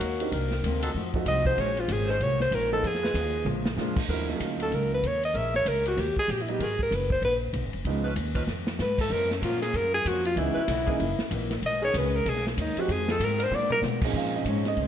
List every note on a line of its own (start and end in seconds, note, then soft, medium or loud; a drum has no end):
0.00 0.31 D#2 medium
0.00 0.22 D#3 medium
0.00 0.30 F#3 loud
0.00 0.22 A#3 medium
0.00 0.30 C#4 medium
0.00 0.23 C#4 medium
0.00 0.30 D#4 medium
0.00 0.30 F#4 loud
0.00 0.23 F#4 medium
0.00 0.30 A#4 loud
0.00 kick soft
0.00 hi-hat pedal medium
0.00 ride medium
0.20 0.32 D#3 medium
0.20 0.32 A#3 medium
0.20 0.32 C4 medium
0.20 0.32 D4 medium
0.20 0.32 G4 medium
0.20 ride medium
0.32 0.62 C2 medium
0.32 0.53 C3 medium
0.32 0.79 D#3 medium
0.32 0.54 D#3 medium
0.32 0.54 A#3 medium
0.32 0.79 C4 medium
0.32 0.80 D4 medium
0.32 0.55 D4 medium
0.32 0.79 A#4 loud
0.32 kick soft
0.32 ride medium
0.51 snare soft
0.63 0.94 D2 medium
0.63 0.85 C3 medium
0.63 0.85 D#3 medium
0.63 0.86 A#3 medium
0.63 0.86 D4 medium
0.63 kick soft
0.63 hi-hat pedal medium
0.63 ride medium
0.82 0.91 F#3 loud
0.82 0.91 D#4 medium
0.82 0.91 F4 medium
0.82 0.91 A4 loud
0.82 ride medium
0.95 1.25 F2 medium
0.95 1.16 F3 medium
0.95 1.16 A3 medium
0.95 1.17 D#4 medium
0.95 1.17 F#4 medium
0.95 kick soft
1.14 1.56 F3 medium
1.14 1.56 A3 medium
1.14 1.56 C4 medium
1.14 1.56 D#4 medium
1.14 1.56 F#4 medium
1.14 kick medium
1.25 1.57 C2 loud
1.25 1.48 F3 medium
1.25 1.48 A3 medium
1.25 1.48 D#4 medium
1.25 1.49 F#4 medium
1.25 1.45 D#5 loud
1.25 kick soft
1.25 hi-hat pedal medium
1.25 ride medium
1.45 1.62 C5 loud
1.45 kick medium
1.45 ride medium
1.57 1.88 A#1 loud
1.57 1.79 A#2 soft
1.57 1.79 D#3 medium
1.57 2.05 G#3 loud
1.57 1.80 G#3 soft
1.57 2.05 C#4 medium
1.57 1.80 C#4 medium
1.57 2.05 D#4 medium
1.57 2.05 C5 loud
1.57 1.81 C#5 medium
1.57 kick soft
1.57 ride medium
1.77 1.94 F4 medium
1.77 ride soft
1.88 2.19 G#1 loud
1.88 2.11 A#2 medium
1.88 2.11 D#3 medium
1.88 2.11 G#3 medium
1.88 2.11 C#4 medium
1.88 2.12 G#4 medium
1.88 kick soft
1.88 hi-hat pedal medium
1.88 ride medium
2.08 2.16 G#3 loud
2.08 2.16 C#4 medium
2.08 2.17 D#4 loud
2.08 2.16 C5 loud
2.08 2.25 C5 loud
2.20 2.51 C2 loud
2.20 2.42 A#2 soft
2.20 2.42 D#3 soft
2.20 2.43 G#3 medium
2.20 2.43 C#4 medium
2.20 2.41 C#5 loud
2.20 kick soft
2.20 ride medium
2.40 2.56 C5 loud
2.40 snare soft
2.51 2.82 A#1 medium
2.51 2.73 A#2 medium
2.51 2.74 D#3 medium
2.51 2.74 G#3 medium
2.51 2.74 C#4 medium
2.51 2.72 A#4 loud
2.51 kick soft
2.51 hi-hat pedal medium
2.51 ride medium
2.72 2.83 F3 medium
2.72 2.83 G#3 medium
2.72 2.83 B3 medium
2.72 2.83 D#4 medium
2.72 2.83 F4 medium
2.72 2.88 A4 loud
2.83 3.14 F2 medium
2.83 3.05 F3 soft
2.83 3.05 B3 medium
2.83 3.05 D#4 medium
2.83 3.06 G#4 medium
2.83 3.48 G#4 medium
2.83 kick soft
2.83 ride medium
2.94 snare soft
3.03 3.44 G#3 loud
3.03 3.44 D#4 medium
3.03 3.44 F4 medium
3.03 3.44 B4 loud
3.03 snare medium
3.14 3.44 D#2 loud
3.14 3.36 F3 medium
3.14 3.36 B3 medium
3.14 3.37 D#4 medium
3.14 3.37 G#4 medium
3.14 kick soft
3.14 hi-hat pedal medium
3.14 ride medium
3.45 3.76 A#1 loud
3.45 3.67 A#2 medium
3.45 3.67 F3 medium
3.45 3.68 G#3 medium
3.45 3.68 D4 medium
3.45 high tom medium
3.65 snare medium
3.77 3.95 F2 medium
3.77 3.99 A#2 medium
3.77 3.95 F3 medium
3.77 3.99 F3 medium
3.77 3.95 G#3 medium
3.77 3.99 G#3 medium
3.77 3.96 A#3 medium
3.77 3.95 D4 medium
3.77 3.99 D4 medium
3.77 3.96 F4 medium
3.77 snare medium
3.77 hi-hat pedal medium
3.96 muted upright bass stroke soft
3.96 kick medium
3.96 crash loud
4.08 4.39 D#2 medium
4.08 4.27 D3 medium
4.08 4.27 F3 medium
4.08 4.56 F#3 loud
4.08 4.27 A3 medium
4.08 4.27 C4 medium
4.08 4.56 C#4 medium
4.08 4.56 D#4 medium
4.08 4.27 E4 medium
4.08 4.56 A#4 loud
4.08 kick soft
4.29 4.96 F#3 medium
4.29 4.96 A#3 medium
4.29 4.97 C#4 medium
4.29 4.97 D#4 medium
4.29 4.97 F4 medium
4.40 4.70 D2 loud
4.40 kick soft
4.40 hi-hat pedal medium
4.40 ride medium
4.59 4.68 F#3 medium
4.59 4.68 C#4 medium
4.59 4.68 D#4 medium
4.59 4.76 A4 loud
4.59 4.68 A#4 medium
4.59 ride medium
4.71 5.02 C#2 loud
4.71 4.93 A#4 medium
4.71 kick soft
4.71 ride medium
4.94 5.08 B4 loud
5.03 5.34 D#2 medium
5.03 5.24 C#5 loud
5.03 kick soft
5.03 hi-hat pedal medium
5.03 ride medium
5.23 5.38 D#5 loud
5.23 ride medium
5.34 5.65 A#1 loud
5.34 5.82 G#3 medium
5.34 5.81 C#4 medium
5.34 5.82 E4 medium
5.34 5.81 A#4 loud
5.34 5.55 E5 medium
5.34 kick soft
5.34 ride medium
5.54 5.70 C#5 loud
5.54 snare soft
5.65 5.96 C#2 loud
5.65 5.86 A#4 medium
5.65 kick soft
5.65 hi-hat pedal medium
5.65 ride medium
5.86 5.94 E3 medium
5.86 5.94 C#4 medium
5.86 5.94 D#4 medium
5.86 6.02 F#4 medium
5.86 5.94 G4 loud
5.86 ride medium
5.97 6.15 D#2 loud
5.97 6.18 G4 medium
5.97 kick soft
5.97 snare soft
5.97 ride medium
6.16 6.33 G#4 loud
6.16 muted upright bass stroke soft
6.16 kick medium
6.28 6.59 A#1 medium
6.28 6.43 G4 medium
6.28 kick soft
6.28 hi-hat pedal medium
6.28 ride medium
6.41 6.53 E4 medium
6.48 6.60 F#3 medium
6.48 6.60 G#3 medium
6.48 6.60 A#3 medium
6.48 6.60 B3 medium
6.48 6.60 D#4 medium
6.48 6.66 G4 medium
6.48 ride medium
6.59 6.90 G#1 medium
6.59 6.74 G#3 medium
6.59 6.74 B3 medium
6.59 6.74 F#4 medium
6.59 6.74 A#4 medium
6.59 kick soft
6.59 ride medium
6.64 6.82 G#4 medium
6.79 6.97 A#4 loud
6.79 kick medium
6.91 7.21 F#1 medium
6.91 kick soft
6.91 hi-hat pedal medium
6.91 ride medium
6.95 7.11 B4 medium
7.10 7.23 C5 loud
7.10 kick medium
7.22 7.52 A#1 medium
7.22 7.36 B4 loud
7.22 kick soft
7.22 ride medium
7.53 7.64 B1 loud
7.53 kick soft
7.53 hi-hat pedal medium
7.53 ride medium
7.64 7.74 G#1 medium
7.73 7.84 F#1 medium
7.73 ride medium
7.85 8.15 C#2 loud
7.85 8.04 F3 medium
7.85 8.04 G#3 medium
7.85 8.04 B3 medium
7.85 8.04 C#4 medium
7.85 8.04 D#4 medium
7.85 kick soft
7.85 ride medium
8.04 8.13 F3 medium
8.04 8.13 C#4 medium
8.04 8.13 D#4 medium
8.04 8.13 B4 loud
8.16 8.46 D#2 loud
8.16 kick soft
8.16 hi-hat pedal medium
8.16 ride medium
8.34 8.44 F3 medium
8.34 8.44 C#4 medium
8.34 8.44 D#4 medium
8.34 8.44 B4 loud
8.34 kick medium
8.34 ride medium
8.47 8.79 F2 medium
8.47 snare soft
8.67 snare medium
8.79 9.09 G#2 loud
8.79 8.99 B4 loud
8.79 snare medium
8.79 hi-hat pedal medium
8.98 9.13 A4 medium
8.98 kick medium
8.98 crash medium
9.10 9.41 F#2 medium
9.10 9.32 F#2 soft
9.10 9.32 F3 medium
9.10 9.33 A#3 medium
9.10 9.33 C#4 medium
9.10 9.31 A#4 loud
9.10 kick soft
9.31 9.46 C#4 medium
9.31 snare soft
9.41 9.64 F#2 medium
9.41 9.73 A#2 loud
9.41 9.64 F3 medium
9.41 9.89 F#3 medium
9.41 9.89 C#4 medium
9.41 9.89 F4 medium
9.41 9.62 F4 medium
9.41 9.89 A#4 loud
9.41 kick soft
9.41 hi-hat pedal medium
9.41 ride medium
9.45 9.65 A#3 medium
9.45 9.65 C#4 medium
9.62 9.77 G#4 medium
9.62 snare soft
9.62 ride medium
9.74 10.04 F#2 medium
9.74 9.95 F#2 soft
9.74 9.96 F3 soft
9.74 9.96 A#3 soft
9.74 9.97 C#4 medium
9.74 9.94 A#4 loud
9.74 kick soft
9.74 ride medium
9.94 10.09 G#4 loud
10.05 10.36 F2 medium
10.05 10.27 F#2 medium
10.05 10.27 F3 medium
10.05 10.28 A#3 medium
10.05 10.25 F#4 loud
10.05 kick soft
10.05 hi-hat pedal medium
10.05 ride medium
10.09 10.28 C#4 medium
10.25 10.40 F4 medium
10.25 ride medium
10.36 10.55 C#2 medium
10.36 10.59 C#3 medium
10.36 10.55 E3 medium
10.36 10.59 E3 medium
10.36 10.55 G#3 medium
10.36 10.55 B3 medium
10.36 10.59 B3 medium
10.36 10.55 C#4 medium
10.36 10.55 D#4 medium
10.36 10.59 D#4 medium
10.36 11.32 E4 medium
10.36 kick soft
10.36 ride medium
10.54 10.64 E3 medium
10.54 10.64 C#4 medium
10.54 10.64 D#4 medium
10.54 10.64 B4 loud
10.54 muted upright bass stroke soft
10.68 10.99 B1 loud
10.68 10.90 C#3 medium
10.68 10.90 E3 medium
10.68 10.90 B3 medium
10.68 10.91 D#4 medium
10.68 kick soft
10.68 snare soft
10.68 hi-hat pedal medium
10.68 ride medium
10.86 10.95 E3 medium
10.86 10.99 E3 medium
10.86 10.99 G#3 medium
10.86 10.95 A#3 medium
10.86 11.00 A#3 medium
10.86 10.99 C#4 medium
10.86 10.95 D#4 loud
10.86 11.00 D#4 medium
10.86 10.95 G#4 loud
10.86 kick medium
10.86 ride medium
10.99 11.18 F#1 loud
10.99 11.21 F#2 medium
10.99 11.21 E3 medium
10.99 11.22 A#3 medium
10.99 11.22 D#4 medium
10.99 kick soft
10.99 ride medium
11.19 muted upright bass stroke soft
11.19 snare medium
11.31 11.62 A#1 loud
11.31 11.52 F#2 medium
11.31 11.53 E3 medium
11.31 11.53 A#3 medium
11.31 11.53 D#4 medium
11.31 kick soft
11.31 hi-hat pedal medium
11.31 ride medium
11.51 snare medium
11.51 ride medium
11.62 11.93 B1 medium
11.62 11.85 B2 medium
11.62 11.85 D#3 medium
11.62 11.83 D#5 medium
11.62 kick soft
11.62 ride medium
11.66 11.85 G#3 medium
11.66 11.86 C#4 medium
11.82 12.24 D#3 loud
11.82 12.24 B3 medium
11.82 12.23 C#4 loud
11.82 12.23 G#4 loud
11.82 11.98 C#5 loud
11.94 12.25 C#2 loud
11.94 12.15 B2 medium
11.94 12.16 D#3 medium
11.94 12.16 G#3 medium
11.94 12.16 C#4 medium
11.94 12.17 B4 loud
11.94 kick soft
11.94 hi-hat pedal medium
11.94 ride medium
12.16 12.30 A#4 loud
12.25 12.56 B1 loud
12.25 12.47 B2 soft
12.25 12.47 D#3 soft
12.25 12.47 G#3 medium
12.25 12.48 C#4 medium
12.25 12.47 G#4 loud
12.25 kick soft
12.25 ride medium
12.36 snare soft
12.47 12.63 B3 medium
12.47 snare medium
12.57 12.75 D#2 loud
12.57 12.79 B2 medium
12.57 12.79 D#3 medium
12.57 12.79 G#3 medium
12.57 12.80 C#4 medium
12.57 kick soft
12.57 hi-hat pedal medium
12.57 ride medium
12.61 12.81 D#4 medium
12.76 12.88 F3 medium
12.76 12.89 G#3 medium
12.76 12.89 C4 medium
12.76 12.88 D#4 medium
12.76 12.93 F#4 medium
12.76 12.89 G4 medium
12.76 muted upright bass stroke soft
12.76 ride medium
12.88 13.19 F2 loud
12.88 13.10 F2 medium
12.88 13.11 D#3 medium
12.88 13.11 G#3 medium
12.88 13.12 G#4 medium
12.88 kick soft
12.88 ride medium
12.93 13.11 C4 medium
13.08 13.16 F3 medium
13.08 13.16 C4 medium
13.08 13.17 D#4 medium
13.08 13.17 G#4 loud
13.08 13.26 A4 loud
13.08 snare medium
13.20 13.41 F2 medium
13.20 13.50 G#2 loud
13.20 13.41 D#3 medium
13.20 13.42 G#3 medium
13.20 13.42 C4 medium
13.20 kick soft
13.20 hi-hat pedal medium
13.20 ride loud
13.24 13.44 A#4 loud
13.39 13.47 G#3 medium
13.39 13.47 B3 medium
13.39 13.47 D4 medium
13.39 13.47 A#4 loud
13.39 ride medium
13.43 13.56 C5 loud
13.51 13.81 A#2 loud
13.51 13.73 A#2 medium
13.51 13.73 G#3 medium
13.51 13.73 B3 medium
13.51 13.74 D4 medium
13.51 13.72 D5 loud
13.51 mid tom medium
13.70 13.79 A#4 loud
13.70 mid tom medium
13.82 14.04 A#2 medium
13.82 14.13 B2 loud
13.82 14.04 G#3 medium
13.82 14.05 B3 medium
13.82 14.05 D4 medium
13.82 snare medium
13.82 hi-hat pedal medium
14.02 14.45 A#2 medium
14.02 14.45 F3 medium
14.02 14.33 C4 medium
14.02 14.33 C#4 medium
14.02 14.34 D#4 medium
14.02 14.45 G#4 medium
14.02 kick medium
14.02 crash medium
14.13 14.44 A#2 medium
14.13 14.35 A#2 soft
14.13 14.36 G#3 soft
14.13 14.36 C#4 medium
14.13 14.35 F5 medium
14.13 kick soft
14.18 14.37 D#4 soft
14.34 14.87 G#3 medium
14.34 14.87 C4 soft
14.34 14.87 C#4 soft
14.34 14.87 D#4 medium
14.34 14.47 D#5 medium
14.45 14.76 G#2 loud
14.45 14.67 A#2 medium
14.45 14.67 G#3 medium
14.45 14.68 C#4 medium
14.45 14.68 D#4 medium
14.45 kick soft
14.45 hi-hat pedal medium
14.45 ride medium
14.49 14.66 C#5 medium
14.65 14.79 D#5 loud
14.65 snare soft
14.65 ride soft
14.77 14.87 C#2 medium
14.77 14.87 A#2 soft
14.77 14.87 G#3 soft
14.77 14.87 C#4 soft
14.77 kick soft
14.77 ride medium
14.81 14.87 D#4 soft
14.81 14.87 C5 medium